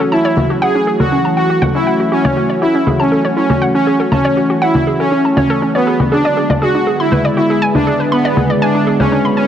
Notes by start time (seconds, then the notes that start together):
Already playing: E3 A3 C#4 F#4 B4 E5
0.12 E4 A5
0.25 C#5
0.37 F#4, low conga
0.50 F#4
0.62 G#4 F#5
0.75 C#4
0.87 G#4
1.00 F#4 A4, low conga
1.12 C#4
1.25 A5
1.37 F#4 F#5
1.50 F#4
1.62 F#5, low conga
1.75 C#4 E4
1.87 F#5
2.00 F#4
2.12 C#4 F#4
2.25 C#5, low conga
2.37 F#4
2.50 C#5
2.62 E4 F#4
2.75 C#4
2.87 G#4, low conga
3.00 C#4 A5
3.12 A4
3.25 C#5
3.37 C#4 E4
3.50 F#4, low conga
3.62 F#5
3.75 C#4
3.87 G#4
4.00 A4
4.12 C#4 A5, low conga
4.25 C#5
4.37 F#4
4.50 F#4
4.62 E4 F#5
4.75 C#4, low conga
4.87 G#4
5.00 C#4 A4
5.12 C#4
5.25 A5
5.37 C#4 C#5, low conga
5.50 A4
5.62 C#4
5.75 B3 C#5
5.87 G#4
6.00 F#4, low conga
6.12 D3 G#3 B3 D4 G#4
6.25 D5
6.31 E5
6.37 F#4 G#4
6.50 D5, low conga
6.57 B4
6.62 F#4 G#4
6.75 D4
6.87 G#4
7.00 E4 B5
7.12 B4, low conga
7.25 D5
7.37 E4 F#4
7.50 G#4
7.62 G#5
7.75 D4, low conga
7.87 G#4
8.00 B4
8.12 B3 B5
8.25 D5
8.37 G#4, low conga
8.50 D5
8.62 D4 G#5
8.75 D4
8.87 G#4
9.00 C#4 B4, low conga
9.12 D4
9.25 B5
9.37 C#4 G#5